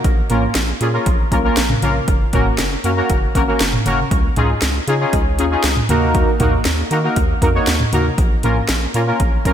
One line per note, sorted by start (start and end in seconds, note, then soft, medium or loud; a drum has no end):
0.04 0.22 A#1 loud
0.04 kick loud
0.04 closed hi-hat medium
0.30 0.48 A#1 loud
0.30 0.43 A#3 medium
0.30 0.43 C#4 medium
0.30 0.43 F4 medium
0.30 0.43 A#4 medium
0.30 closed hi-hat medium
0.30 mid tom medium
0.55 0.73 A#1 loud
0.55 snare loud
0.55 closed hi-hat medium
0.81 0.99 A#2 loud
0.81 0.88 A#3 medium
0.81 0.88 C#4 medium
0.81 0.88 F4 medium
0.81 0.88 G#4 medium
0.81 closed hi-hat medium
0.93 1.07 A#3 medium
0.93 1.07 C#4 medium
0.93 1.07 F4 medium
0.93 1.07 A#4 medium
1.06 1.24 A#1 loud
1.06 kick medium
1.06 closed hi-hat medium
1.31 1.49 B1 loud
1.31 1.38 A#3 medium
1.31 1.38 C#4 medium
1.31 1.38 F4 medium
1.31 1.38 A#4 medium
1.31 kick medium
1.31 closed hi-hat medium
1.44 1.58 A#3 medium
1.44 1.58 C#4 medium
1.44 1.58 F4 medium
1.44 1.58 A#4 medium
1.57 1.75 A#1 medium
1.57 snare loud
1.57 closed hi-hat medium
1.70 mid tom loud
1.70 mid tom medium
1.82 2.00 A#1 loud
1.82 1.96 A#3 medium
1.82 1.96 C#4 medium
1.82 1.96 F4 medium
1.82 1.96 A#4 loud
1.82 closed hi-hat medium
1.82 mid tom medium
2.08 2.26 F#1 loud
2.08 kick loud
2.08 closed hi-hat medium
2.33 2.51 F#1 loud
2.33 2.47 A#3 medium
2.33 2.47 C#4 medium
2.33 2.47 F#4 medium
2.33 2.47 A#4 medium
2.33 kick loud
2.33 closed hi-hat medium
2.33 mid tom medium
2.58 2.76 F#1 loud
2.58 snare loud
2.58 closed hi-hat medium
2.84 3.02 F#2 medium
2.84 2.91 A#3 medium
2.84 2.91 C#4 medium
2.84 2.91 F#4 medium
2.84 2.91 A#4 medium
2.84 closed hi-hat medium
2.97 3.10 A#3 medium
2.97 3.10 C#4 medium
2.97 3.10 F#4 medium
2.97 3.10 A#4 medium
3.10 3.28 F#1 loud
3.10 kick medium
3.10 closed hi-hat medium
3.35 3.53 G#1 medium
3.35 3.42 A#3 medium
3.35 3.42 C#4 medium
3.35 3.42 F#4 medium
3.35 3.42 A#4 loud
3.35 kick medium
3.35 closed hi-hat medium
3.48 3.61 A#3 medium
3.48 3.61 C#4 medium
3.48 3.61 F#4 medium
3.48 3.61 A#4 medium
3.60 3.78 F#1 loud
3.60 snare loud
3.60 closed hi-hat medium
3.73 mid tom loud
3.86 4.04 F#1 loud
3.86 3.99 A#3 medium
3.86 3.99 C#4 medium
3.86 3.99 F#4 medium
3.86 3.99 A#4 loud
3.86 closed hi-hat medium
3.86 mid tom medium
4.11 4.29 C#2 loud
4.11 kick loud
4.11 closed hi-hat medium
4.36 4.54 C#2 loud
4.36 4.50 C#4 medium
4.36 4.50 D#4 medium
4.36 4.50 F4 medium
4.36 4.50 G#4 medium
4.36 closed hi-hat medium
4.36 mid tom medium
4.62 4.80 C#2 loud
4.62 snare loud
4.62 closed hi-hat medium
4.88 5.05 C#3 loud
4.88 4.94 C#4 medium
4.88 4.94 D#4 medium
4.88 4.94 F4 medium
4.88 4.94 G#4 loud
4.88 closed hi-hat medium
5.00 5.14 C#4 medium
5.00 5.14 D#4 medium
5.00 5.14 F4 medium
5.00 5.14 G#4 medium
5.13 5.40 C#2 loud
5.13 kick medium
5.13 closed hi-hat medium
5.38 5.56 D#2 medium
5.38 5.45 C#4 medium
5.38 5.45 D#4 medium
5.38 5.45 F4 medium
5.38 5.45 G#4 loud
5.38 closed hi-hat medium
5.51 5.65 C#4 medium
5.51 5.65 D#4 medium
5.51 5.65 F4 medium
5.51 5.65 G#4 medium
5.64 5.82 C#2 loud
5.64 snare loud
5.64 closed hi-hat medium
5.77 mid tom medium
5.89 6.25 D#2 loud
5.89 6.30 A#3 medium
5.89 6.30 D#4 medium
5.89 6.30 F#4 medium
5.89 6.30 A#4 loud
5.89 closed hi-hat medium
5.89 mid tom medium
6.15 kick loud
6.15 closed hi-hat medium
6.40 6.58 D#2 loud
6.40 6.54 A#3 medium
6.40 6.54 D#4 medium
6.40 6.54 F#4 medium
6.40 6.54 A#4 medium
6.40 kick medium
6.40 closed hi-hat medium
6.40 mid tom medium
6.65 6.83 D#2 loud
6.65 snare loud
6.65 closed hi-hat medium
6.91 7.09 D#3 medium
6.91 6.98 A#3 medium
6.91 6.98 D#4 medium
6.91 6.98 F#4 medium
6.91 6.98 A#4 medium
6.91 closed hi-hat medium
7.04 7.17 A#3 medium
7.04 7.17 D#4 medium
7.04 7.17 F#4 medium
7.04 7.17 A#4 medium
7.16 7.34 D#2 loud
7.16 kick medium
7.16 closed hi-hat medium
7.42 7.60 F2 medium
7.42 7.49 A#3 medium
7.42 7.49 D#4 medium
7.42 7.49 F#4 medium
7.42 7.48 A#4 medium
7.42 kick medium
7.42 closed hi-hat medium
7.55 7.68 A#3 medium
7.55 7.68 D#4 medium
7.55 7.68 F#4 medium
7.55 7.68 C#5 medium
7.67 7.85 D#2 loud
7.67 snare loud
7.67 closed hi-hat medium
7.80 mid tom loud
7.93 8.10 D#2 loud
7.93 8.06 A#3 medium
7.93 8.06 D#4 medium
7.93 8.06 F#4 medium
7.93 8.06 A#4 loud
7.93 closed hi-hat medium
7.93 mid tom medium
8.18 8.36 A#1 loud
8.18 kick loud
8.18 closed hi-hat medium
8.43 8.61 A#1 loud
8.43 8.57 A#3 medium
8.43 8.57 C#4 medium
8.43 8.57 F4 medium
8.43 8.57 A#4 medium
8.43 closed hi-hat medium
8.43 mid tom medium
8.69 8.87 A#1 loud
8.69 snare loud
8.69 closed hi-hat medium
8.94 9.12 A#2 medium
8.94 9.01 A#3 medium
8.94 9.01 C#4 medium
8.94 9.01 F4 medium
8.94 9.01 A#4 medium
8.94 closed hi-hat medium
9.07 9.21 A#3 medium
9.07 9.21 C#4 medium
9.07 9.21 F4 medium
9.07 9.21 A#4 medium
9.20 9.38 A#1 loud
9.20 kick medium
9.20 closed hi-hat medium
9.45 9.53 B1 loud
9.45 9.52 A#3 medium
9.45 9.52 C#4 medium
9.45 9.52 F4 medium
9.45 9.52 A#4 loud
9.45 kick medium
9.45 closed hi-hat medium